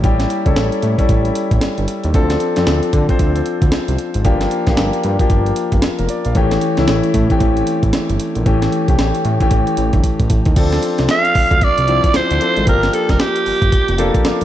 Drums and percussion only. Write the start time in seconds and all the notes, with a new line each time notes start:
0.04 kick, closed hi-hat
0.20 snare, closed hi-hat
0.30 closed hi-hat
0.46 kick, closed hi-hat
0.56 snare, closed hi-hat
0.72 closed hi-hat
0.82 closed hi-hat
0.98 kick, closed hi-hat
1.09 kick, closed hi-hat
1.25 closed hi-hat
1.35 closed hi-hat
1.51 kick, closed hi-hat
1.61 snare, closed hi-hat
1.78 closed hi-hat
1.88 closed hi-hat
2.04 closed hi-hat
2.14 kick, closed hi-hat
2.30 snare, closed hi-hat
2.40 closed hi-hat
2.56 snare, closed hi-hat
2.67 snare, closed hi-hat
2.83 closed hi-hat
2.93 kick, closed hi-hat
3.09 kick, closed hi-hat
3.19 kick, closed hi-hat
3.36 closed hi-hat
3.46 closed hi-hat
3.62 kick, closed hi-hat
3.72 snare, closed hi-hat
3.88 closed hi-hat
3.98 closed hi-hat
4.14 closed hi-hat
4.25 kick, closed hi-hat
4.41 snare, closed hi-hat
4.51 closed hi-hat
4.67 kick, snare, closed hi-hat
4.77 snare, closed hi-hat
4.93 closed hi-hat
5.04 closed hi-hat
5.19 kick, closed hi-hat
5.30 kick, closed hi-hat
5.46 closed hi-hat
5.56 closed hi-hat
5.72 kick, closed hi-hat
5.82 snare, closed hi-hat
5.99 closed hi-hat
6.09 closed hi-hat
6.25 closed hi-hat
6.35 kick, closed hi-hat
6.51 snare, closed hi-hat
6.61 closed hi-hat
6.77 snare, closed hi-hat
6.88 snare, closed hi-hat
7.04 closed hi-hat
7.14 kick, closed hi-hat
7.30 kick, closed hi-hat
7.40 kick, closed hi-hat
7.57 closed hi-hat
7.67 closed hi-hat
7.83 kick, closed hi-hat
7.93 snare, closed hi-hat
8.09 closed hi-hat
8.20 closed hi-hat
8.35 closed hi-hat
8.46 kick, closed hi-hat
8.62 snare, closed hi-hat
8.72 closed hi-hat
8.88 kick, closed hi-hat
8.99 snare, closed hi-hat
9.15 closed hi-hat
9.25 closed hi-hat
9.40 kick, closed hi-hat
9.51 kick, closed hi-hat
9.67 closed hi-hat
9.77 closed hi-hat
9.93 kick, closed hi-hat
10.04 kick, closed hi-hat
10.20 kick, closed hi-hat
10.30 kick, closed hi-hat
10.45 kick, closed hi-hat
10.56 kick, closed hi-hat, crash
10.72 snare, closed hi-hat
10.83 closed hi-hat
10.98 snare, closed hi-hat
11.09 snare, closed hi-hat
11.25 closed hi-hat
11.35 kick, open hi-hat
11.51 kick, closed hi-hat
11.61 kick, closed hi-hat
11.78 closed hi-hat
11.88 closed hi-hat
12.04 kick, closed hi-hat
12.14 snare, closed hi-hat
12.31 closed hi-hat
12.41 closed hi-hat
12.57 closed hi-hat
12.67 kick, closed hi-hat
12.83 snare, closed hi-hat
12.93 closed hi-hat
13.09 kick, snare, closed hi-hat
13.20 snare, closed hi-hat
13.36 closed hi-hat
13.46 open hi-hat
13.62 kick, closed hi-hat
13.72 kick, closed hi-hat
13.88 closed hi-hat
13.98 closed hi-hat
14.14 kick, closed hi-hat
14.25 snare, closed hi-hat
14.41 closed hi-hat